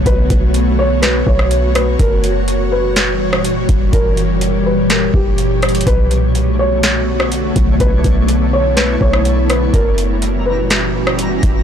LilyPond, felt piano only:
\new Staff \with { instrumentName = "Felt piano" } { \time 4/4 \key b \minor \tempo 4 = 124 b'4. cis''8 b'8 cis''4 b'8 | ais'4. b'2~ b'8 | ais'4. b'8 ais'8 g'8 r4 | b'4. cis''2~ cis''8 |
b'4. cis''8 b'8 cis''4 b'8 | ais'4. b'2~ b'8 | }